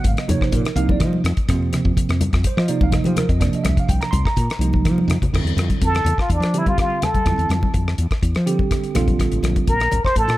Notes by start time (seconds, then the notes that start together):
Already playing: C#3 F#3 B3 F#4
0.04 G#1 F5, kick, closed hi-hat
0.17 D#5, cross-stick, closed hi-hat
0.28 F2 C3 F3 A#3 D#4 C#5, closed hi-hat, high conga, low conga
0.41 C5, muted fretless electric bass stroke, kick, cross-stick
0.52 A#2 A#4, kick, closed hi-hat
0.65 cross-stick, closed hi-hat
0.76 C2 C3 F3 A#3 D#4 F5, closed hi-hat
0.89 D5, kick, high conga
1.00 F3 D#5, kick, cross-stick, closed hi-hat, low conga
1.13 high conga
1.24 F2, cross-stick, closed hi-hat
1.37 kick, closed hi-hat
1.48 F2 C3 F3 A#3 C4, kick, cross-stick, closed hi-hat
1.73 cross-stick, closed hi-hat, low conga
1.85 F2, kick
1.97 kick, closed hi-hat
2.09 F2, cross-stick, closed hi-hat
2.21 closed hi-hat, high conga, low conga
2.33 F2, kick, cross-stick, closed hi-hat
2.44 C5, kick, closed hi-hat
2.57 F3 D#5, cross-stick
2.68 C3 F3 A#3 D#4 D5, closed hi-hat
2.81 C2 F5, kick, high conga
2.92 D#5, muted fretless electric bass stroke, kick, cross-stick, closed hi-hat, low conga
3.04 F3 G4, closed hi-hat, high conga
3.16 A#4, cross-stick, closed hi-hat, low conga
3.29 F2 D#5, kick, closed hi-hat
3.39 C3 F3 A#3 D4 D5, kick, cross-stick, closed hi-hat
3.53 D#5, muted fretless electric bass stroke, closed hi-hat
3.64 C2 E5, cross-stick, closed hi-hat, high conga, low conga
3.77 F5, kick, closed hi-hat
3.88 C2 G5, kick, closed hi-hat
4.01 A#5, cross-stick, closed hi-hat
4.11 C2 C6, closed hi-hat, high conga, low conga
4.25 A#5, kick, cross-stick
4.37 A#2, kick, closed hi-hat
4.50 cross-stick, closed hi-hat
4.59 C2 C3 F3 A#3 D#4, closed hi-hat
4.73 kick, high conga
4.85 F3, kick, cross-stick, closed hi-hat, high conga
4.98 high conga
5.08 F2, cross-stick, closed hi-hat, low conga
5.22 kick, closed hi-hat, low conga
5.33 F2 D3 G3 C4 E4, kick, cross-stick, crash
5.44 E2, closed hi-hat
5.56 F2, cross-stick, closed hi-hat, high conga
5.70 kick, closed hi-hat, high conga
5.82 F2 A4, kick, closed hi-hat
5.95 cross-stick, closed hi-hat
6.04 E2, closed hi-hat, low conga
6.18 F4, muted fretless electric bass stroke, kick, cross-stick
6.29 E2 D4, kick, closed hi-hat
6.40 F3, cross-stick, closed hi-hat
6.54 D3 G3 C4 G4, closed hi-hat
6.58 E4
6.66 F4, kick, closed hi-hat, high conga
6.78 F4, kick, cross-stick, closed hi-hat
7.02 A4, cross-stick, closed hi-hat, high conga, low conga
7.14 muted fretless electric bass stroke, kick, closed hi-hat, high conga
7.25 F2 D3 G3 C4 E4, kick, cross-stick, closed hi-hat
7.38 E2, closed hi-hat
7.49 F2, cross-stick, closed hi-hat, high conga
7.63 kick, high conga
7.74 F2, kick, closed hi-hat
7.88 cross-stick
7.98 E2, closed hi-hat
8.11 muted fretless electric bass stroke, kick, cross-stick, closed hi-hat
8.22 E2, kick, closed hi-hat
8.35 F3, cross-stick, closed hi-hat
8.46 D3 G3 C4 G4, closed hi-hat
8.59 kick, high conga
8.71 kick, cross-stick, closed hi-hat
8.84 closed hi-hat
8.95 A#1 D3 G3 C4 F4, cross-stick, closed hi-hat, high conga, low conga
9.08 kick, closed hi-hat, high conga
9.19 kick, cross-stick, closed hi-hat
9.32 A1, closed hi-hat
9.43 A#1, cross-stick, closed hi-hat, high conga
9.56 kick, closed hi-hat, high conga
9.67 A#1 A#4, kick, closed hi-hat
9.80 cross-stick, closed hi-hat
9.92 A1, closed hi-hat, low conga
10.04 C5, muted fretless electric bass stroke, kick, cross-stick
10.15 A1 A4, kick, closed hi-hat
10.28 A#2, cross-stick, closed hi-hat